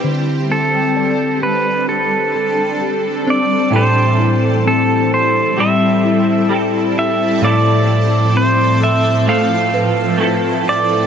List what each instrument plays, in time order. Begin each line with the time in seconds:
Already playing: ambient pad G3 C4, clean electric guitar C4 E4 B4, synth bell B4
0.04 clean electric guitar D3, ambient pad D4 A4
0.50 clean electric guitar C4, pedal steel guitar A4
0.96 clean electric guitar A4, synth bell D5
1.42 clean electric guitar C4, pedal steel guitar B4
1.88 clean electric guitar G4, pedal steel guitar A4
2.35 clean electric guitar A4
2.81 clean electric guitar G4
3.26 clean electric guitar C4, synth bell C5
3.30 pedal steel guitar D5
3.71 clean electric guitar A2 E3 G3 A4, ambient pad G3 C4 E4 A4, synth bell G5
3.75 clean electric guitar C4 G4 A4, pedal steel guitar C5
4.18 clean electric guitar E4
4.65 clean electric guitar C4, pedal steel guitar A4
5.11 clean electric guitar A4, pedal steel guitar C5
5.57 clean electric guitar G3 C4 G4 A4, pedal steel guitar E5
6.04 clean electric guitar E4
6.49 clean electric guitar G3 C4 G4 A4
6.96 clean electric guitar E4, pedal steel guitar E5
7.41 clean electric guitar A2 F3 A3 C4 A4, ambient pad A2 F3, pedal steel guitar D5
7.45 clean electric guitar E4 A4
8.35 clean electric guitar C4, pedal steel guitar C5
8.81 clean electric guitar A4, pedal steel guitar E5
9.26 clean electric guitar A3 C4 A4, synth bell A4 C5, pedal steel guitar F5
9.74 synth bell B4
10.18 clean electric guitar A3 C4 E4 A4
10.66 clean electric guitar E4, pedal steel guitar D5